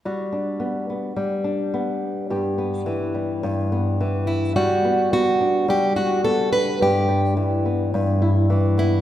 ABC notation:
X:1
M:4/4
L:1/8
Q:"Swing 16ths" 1/4=107
K:G
V:1 name="Steel-string acoustic guitar"
z8 | z6 z E | F2 F2 G F A B | G2 z4 z E |]
V:2 name="Nylon-string guitar"
[G,F] D B, B, G, D B,2 | [G,,G] B, E, G, G,, B, E,2 | G, B, B, D G, F B, D | G,, G, E, B, G,, E E, B, |]